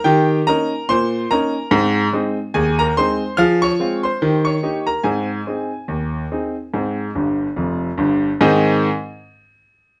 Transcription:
grand piano
0.04 D#3 G4 G5
0.47 A#3 C#4 D#4 A#4 A#5
0.89 A#2 C5 C6
1.31 A#3 C#4 D#4 A#4 A#5
1.71 G#2 C4
2.13 G#3 C4 D#4
2.54 D#2 G#4 G#5
2.79 A#4 A#5
2.97 G#3 C4 D#4 C5 C6
3.37 F3 G#4 F5 F6
3.62 C#5 C#6
3.80 G#3 C4 F4
4.03 C5 C6
4.22 D#3 G4
4.45 C#5 C#6
4.63 A#3 D#4 G4
4.87 A#4 A#5
5.03 G#2 C4 G#4 G#5
5.47 C4 D#4 G#4
5.88 D#2
6.32 C4 D#4 G#4
6.74 G#2 C4
7.15 G1 G2
7.56 F1 F2
7.98 G1 G2
8.41 G#2 D#3 C4 D#4 G#4 C5

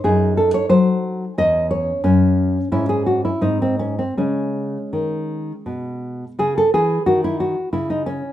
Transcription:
nylon-string guitar
0.04 F#2 D#4 G#4
0.37 A4
0.54 C#5
0.69 F#3 C5
1.38 E2 C#4 D#5
1.71 C#5
2.04 F#2 C#4
2.72 G#2 C#4 E4
2.89 G#4
3.06 F#4
3.25 E4
3.41 G#2 C4 D#4
3.62 C4
3.79 C#4
3.99 C4
4.17 C#3 G#3 C#4
4.93 D#3
5.66 B2
6.39 C#3 G#4
6.58 A4
6.74 E3 G#4
7.06 D#3 F#4
7.24 E4
7.40 F#4
7.73 C#3 E4
7.90 D#4
8.06 C#4

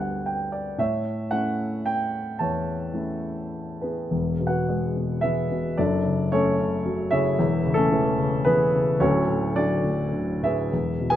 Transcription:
grand piano
Already playing: D2 G3 B3 D4 B4 D5 G5
0.00 F#5
0.26 G5
0.52 D5
0.78 A2 C#5 E5
1.31 A3 C#4 E4 F#5
1.86 G5
2.39 E2 C#5 A5
2.93 A3 C#4 E4
3.81 B3 E4 G#4 B4
4.11 E1 E2
4.40 B2
4.47 F#4 B4 F#5
4.69 G#3
4.96 B2
5.21 E3 E4 G#4 E5
5.51 B2
5.78 F#1 F#2 D4 A4 D5
6.05 C#3
6.32 A3 C#4 A4 C#5
6.59 C#3
6.86 F#3
7.11 C#3 E4 G#4 C#5 E5
7.39 E1 E2
7.65 C#3
7.74 A3 C#4 A4
7.92 E3
8.18 C#3
8.45 E3 B3 G#4 B4
8.74 C#3
9.00 D1 D2 C#4 F#4 A4 C#5
9.28 A2
9.55 F#3 D4 F#4 D5
9.84 A2
10.12 D3
10.42 A2 E4 G#4 B4 E5
10.73 E1 E2
11.00 B2
11.10 G#4 B4 G#5

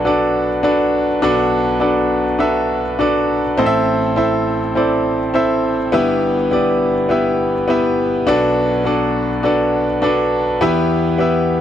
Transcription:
grand piano
Already playing: B1 B2 D4 F#4 A4 B4 D5
0.05 D4 F#4 A4 B4 D5
0.63 D4 F#4 A4 B4 D5
1.22 B1 B2 D4 F#4 A4 B4 D5
1.80 D4 F#4 A4 B4 D5
2.39 D4 F#4 A4 B4 E5
2.99 D4 F#4 A4 B4 D5
3.57 A1 A2 C4 E4 A4 C5 D#5
3.66 E5
4.16 C4 E4 A4 C5 E5
4.75 C4 E4 A4 C5 D5
5.34 C4 E4 A4 C5 E5
5.92 G1 G2 B3 E4 G4 B4 E5
6.51 B3 E4 G4 B4 D5
7.09 B3 E4 G4 B4 E5
7.68 B3 E4 G4 B4 E5
8.27 B1 B2 D4 F#4 A4 B4 D5
8.84 D4 F#4 A4 B4 D5
9.43 D4 F#4 A4 B4 D5
10.02 D4 F#4 A4 B4 D5
10.61 E2 E3 B3 E4 G4 B4 E5
11.18 B3 E4 G4 B4 E5

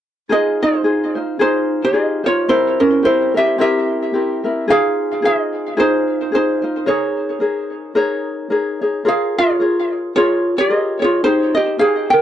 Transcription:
ukulele
0.29 D#4 F4 G#4 C5 D#5
0.63 D#4 C5
0.84 D#4 F4 G#4 C5
1.15 D#4 F4 C5
1.39 D#4 F4 G#4 C5
1.85 G4 D#5
1.93 D#4 F4 G#4 C5
2.24 D#4 F4 C5 C#5
2.48 C4 E4 G4 A#4 C5
2.80 C#4 A#4
3.03 C4 E4 G4 A#4 C5
3.34 C4 E4 A#4 E5
3.38 G4
3.58 C4 E4 G4 A#4 E5
4.13 C4 E4 G4 A#4
4.44 C4 E4 A#4
4.68 D#4 F4 G#4 C5 F5
5.22 D#4 F4 G#4 C5 D#5
5.26 G#4
5.77 D#4 F4 G#4 C5
6.32 D#4 F4 G#4 C5
6.36 D#4
6.62 D#4 F4 C5
6.86 D#4 G#4 A#4 C#5
7.40 D#4 G#4 A#4 C#5
7.95 D#4 G#4 A#4 C#5
8.50 D#4 G#4 A#4 C#5
8.82 D#4 G#4 C#5
9.05 F4 G#4 A#4 C#5 F5
9.38 F4 C#5
9.60 F4 G#4 A#4 C#5
10.16 F4 G#4 A#4 C#5
10.58 G4 D5
10.70 F4 G#4 A#4 C#5
10.75 D#5
11.00 F4 G#4 C#5
11.04 F4
11.24 D#4 G4 G#4 C5
11.55 G4 D#5
11.78 D#4 G4 G#4 C5 F5
12.10 A#4 G5

